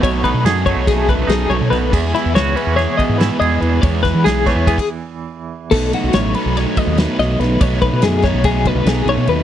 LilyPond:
<<
  \new Staff \with { instrumentName = "Clean electric guitar" } { \time 9/8 \key b \mixolydian \tempo 4. = 95 cis''8 b'8 gis'8 cis''8 gis'8 b'8 gis'8 cis''8 b'8 | gis'8 e'8 cis''8 b'8 cis''8 dis''8 b'8 dis''8 b'8 | cis''8 b'8 gis'8 cis''8 gis'8 r2 | a'8 fis'8 cis''8 b'8 cis''8 dis''8 b'8 dis''8 b'8 |
cis''8 b'8 gis'8 cis''8 gis'8 b'8 gis'8 cis''8 b'8 | }
  \new Staff \with { instrumentName = "Clean electric guitar" } { \time 9/8 \key b \mixolydian << { a8 dis'8 gis'8 a4. dis'4. | r8 e'8 fis'8 cis'8 gis'4 e'8 gis'4 | r4 gis'8 a16 b8 r2 r16 | r1 r8 |
r1 r8 | } \\ { b,4. fis4 fis,4. b,8 | e,4. e4 b,4. e,8 | e,4. e2.~ | e2~ e16 r2 r16 |
r1 r8 | } >> }
  \new Staff \with { instrumentName = "Overdriven electric guitar" } { \time 9/8 \key b \mixolydian <b, fis a dis' a'>4. <b, fis a dis' a'>4. <b, fis a dis' a'>4. | <e gis b e' gis'>4. <e gis b e' gis'>4. <e gis b e' gis'>4. | <e gis b e' gis'>4. <e gis b e' gis'>8 r2 r8 | <b, fis a dis'>4. <b, fis a dis'>4. <b, fis a dis'>4. |
<b, fis a dis'>4. <b, fis a dis'>4. <b, fis a dis'>4. | }
  \new Staff \with { instrumentName = "Fingered electric bass" } { \clef bass \time 9/8 \key b \mixolydian b,,8. b,16 fis,8. b,,4 b,,16 b,,8 b,,16 b,16 b,,8 | e,8 r16 e,16 cis,8 r16 e,8 r8 gis,8 r16 e,8 e,8 | e,8. e16 b,,8. e,8 r2 r16 | b,,8 r16 b,,16 a,,8 r16 b,,8 r8 dis,8 r16 b,,8 b,,8 |
b,,8. b,16 fis,8. b,,4 b,,16 b,,8 b,,16 b,16 dis,8 | }
  \new DrumStaff \with { instrumentName = "Drums" } \drummode { \time 9/8 <bd cymr>8 <bd cymr>8 <cymr sn>8 <bd cymr>8 <bd cymr sn>8 <bd cymr>8 <cymr sn>8 cymr8 <cymr sn>8 | <cymc bd>8 <cymr sn>8 <cymr sn>8 cymr8 <cymr sn>8 <bd cymr>8 <cymr sn>8 cymr8 cymr8 | <bd cymr>8 <bd cymr sn>8 <cymr sn>8 <bd cymr sn>8 <bd cymr>16 <cymc bd>8. r4. | <cymc bd>8 cymr8 <cymr sn>8 cymr8 <cymr sn>8 <bd cymr>8 <cymr sn>8 <cymr sn>8 <cymr sn>8 |
<bd cymr>8 <bd cymr>8 <cymr sn>8 <bd cymr sn>8 <bd cymr>8 <bd cymr>8 <cymr sn>8 cymr8 cymr8 | }
>>